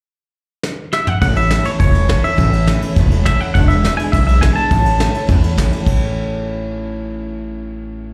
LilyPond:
<<
  \new Staff \with { instrumentName = "Clean electric guitar" } { \time 4/4 \key a \major \tempo 4 = 207 r2. e''8 fis''8 | fis''8 e''4 cis''8 cis''4. e''8~ | e''4. r4. e''8 fis''8 | fis''8 e''4 gis''8 e''8 e''8 gis''8 a''8~ |
a''2~ a''8 r4. | r1 | r1 | }
  \new Staff \with { instrumentName = "Steel-string acoustic guitar" } { \time 4/4 \key a \major r1 | <a, e a cis' e'>8 <a cis' e'>8 <a, e a cis' e'>8 <a cis' e'>8 <e a cis' e'>8 <a cis' e'>8 <a, e a cis' e'>8 <a cis' e'>8 | <a, e a cis' e'>8 <a cis' e'>8 <a, e a cis' e'>8 <a cis' e'>8 <e a cis' e'>8 <a cis' e'>8 <a, e a cis' e'>8 <a cis' e'>8 | <e, b, e gis d' e'>8 <e gis d' e'>8 <e, b, e gis d' e'>8 <e gis d' e'>8 <e gis d' e'>8 <e gis d' e'>8 <e, b, e gis d' e'>8 <e gis d' e'>8 |
<a, e a cis' e'>8 <a cis' e'>8 <a, e a cis' e'>8 <a cis' e'>8 <e a cis' e'>8 <a cis' e'>8 <a, e a cis' e'>8 <a cis' e'>8 | <a, e a cis' e'>1~ | <a, e a cis' e'>1 | }
  \new Staff \with { instrumentName = "Upright bass" } { \clef bass \time 4/4 \key a \major r1 | a,,4. r8 e,,4. r8 | a,,4. r8 e,,4. r8 | e,,4. r8 b,,4. r8 |
a,,4. r8 e,4. r8 | a,,1~ | a,,1 | }
  \new DrumStaff \with { instrumentName = "Drums" } \drummode { \time 4/4 r4 r4 sn4 sn8 toml8 | <bd cymr>8 cymr8 <cymr sn>8 <cymr sn>8 <bd cymr>8 cymr8 <bd cymr sn>8 cymr8 | <bd cymr>8 cymr8 <cymr sn>8 cymr8 <bd cymr>8 cymr8 <bd cymr sn>8 cymr8 | <bd cymr>8 cymr8 <cymr sn>8 cymr8 <bd cymr>8 cymr8 <bd cymr sn>8 cymr8 |
<bd cymr>8 cymr8 <cymr sn>8 cymr8 <bd cymr>8 cymr8 <bd cymr sn>8 cymr8 | <cymc bd>4 r4 r4 r4 | r4 r4 r4 r4 | }
>>